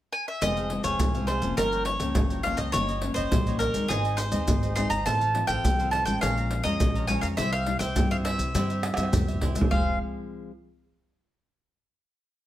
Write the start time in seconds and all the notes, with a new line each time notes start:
0.12 G#5
0.28 E5
0.41 F1 F2 F3 G#3 C4 F4 G#4 C5 D#5 F5, pandeiro, maracas, surdo
0.56 G#4 C5 F5, pandeiro, maracas
0.70 F3 G#3 C4, muted cavaquinho stroke, pandeiro
0.84 F1 G#4 C5 C#5 F5, pandeiro, maracas, surdo
0.99 C2 C3, pandeiro, maracas, surdo
1.15 F3 G#3 C4 G#4 C5 F5, pandeiro, maracas, surdo
1.27 F4 G#4 C5 F5, pandeiro
1.42 F1 F3 A#3 C#4, pandeiro, maracas, surdo
1.57 G1 G2 F4 A#4 C#5 G5, pandeiro, maracas, surdo
1.72 A#4 C#5 G5, pandeiro, maracas
1.85 C#5, muted cavaquinho stroke, pandeiro
1.99 C#2 F3 A#3 C#4 A#4 C#5 G5, pandeiro, maracas, surdo
2.15 G1 G2, pandeiro, maracas, surdo
2.30 A#4 C#5 G5, pandeiro, maracas
2.43 F3 A#3 C#4 F4 A#4 C#5 F5 G5, pandeiro
2.57 C#2 A#4 C#5 D#5 G5, pandeiro, maracas
2.72 G1 G2 D#3 A#3 C#4 D#4 G4 C#5 D#5, pandeiro, maracas, surdo
2.89 G4 C#5 D#5, pandeiro, maracas
3.02 D#3 A#3 C#4, muted cavaquinho stroke, pandeiro
3.14 G1 C5 C#5 D#5, pandeiro, maracas, surdo
3.19 G4
3.32 A#1 G2, pandeiro, maracas, surdo
3.47 D#3 A#3 C#4 G4 C#5 D#5, pandeiro, maracas, surdo
3.59 D#4 G4 A#4 C#5 D#5, pandeiro, maracas
3.74 D#2 G#3 C4 D#4, pandeiro, maracas, surdo
3.88 G#1 G#2 D#4 G#4 C5 D#5, pandeiro, maracas, surdo
4.05 G#4 C5 D#5, pandeiro, maracas
4.17 C5, muted cavaquinho stroke, pandeiro, maracas
4.32 D#2 G#3 C4 D#4 G#4 C5 D#5, pandeiro, maracas, surdo
4.48 G#1 D#3, pandeiro, maracas, surdo
4.63 G#4 C5 D#5, pandeiro, maracas
4.75 G#3 C4 D#4 G#4 C5 D#5 C6, pandeiro, maracas
4.89 G1 G#4 C5 D#5 A#5, pandeiro, maracas
5.05 A1 A2 F3 C4 F4 A4 C5 F5 A5, pandeiro, maracas, surdo
5.20 A4 C5 F5, pandeiro, maracas
5.34 F3 C4 F4, muted cavaquinho stroke, pandeiro
5.47 A1 A4 C5 F5 G5, pandeiro, maracas, surdo
5.64 C2 A2, pandeiro, maracas, surdo
5.79 F3 C4 F4 A4 C5 F5, pandeiro, maracas, surdo
5.91 F4 A4 C5 F5 A5, pandeiro
6.05 A1 G#3 C#4 F4 G5, pandeiro, maracas, surdo
6.21 A#1 A#2 G#4 C#5 F5 A#5, pandeiro, maracas, surdo
6.38 C#5 F5 A#5, pandeiro, maracas
6.51 muted cavaquinho stroke, pandeiro
6.63 F2 G#3 C#4 F4 C#5 D#5 F5 A#5, pandeiro, maracas, surdo
6.80 A#1 F3, pandeiro, maracas, surdo
6.95 C#5 F5 A#5, pandeiro, maracas
7.07 G#3 C#4 F4 G#4 C#5 F5 G#5 A#5, pandeiro, maracas, surdo
7.21 F2 C#5 F5 A#5, pandeiro, maracas
7.37 C2 C3 G3 C4 E4 G4 C5 E5, pandeiro, maracas, surdo
7.53 G4 C5 E5 F5, pandeiro, maracas
7.66 G3 C4 E4, muted cavaquinho stroke, pandeiro
7.79 C2 G4 C5 E5 G5, pandeiro, maracas, surdo
7.96 G2 G3 C4 E4, pandeiro, maracas, surdo
8.11 G3 C4 E4 G4 C5 E5 F5, pandeiro, maracas, surdo
8.24 E4 G4 C5 E5, pandeiro
8.39 C2, pandeiro, maracas, surdo
8.54 G2 C3 G3 C4 E4 G4 C5 E5, pandeiro, maracas, surdo
8.70 G4 C5 E5, pandeiro, maracas
8.83 muted cavaquinho stroke, pandeiro, tamborim
8.94 G2 G3 C4 E5, pandeiro, tamborim, maracas, surdo
8.98 E4 G4 C5
9.03 tamborim
9.13 C2 G3, surdo, pandeiro, maracas
9.28 G4 C5 E5, pandeiro, maracas
9.32 surdo
9.41 E4 G4 C5 E5, pandeiro, surdo
9.55 E2 G#3 C4 F4 G4 C5 E5, pandeiro, maracas
9.61 surdo
9.70 F1 F3 G#3 C4 F4 G#4 C5 F5, surdo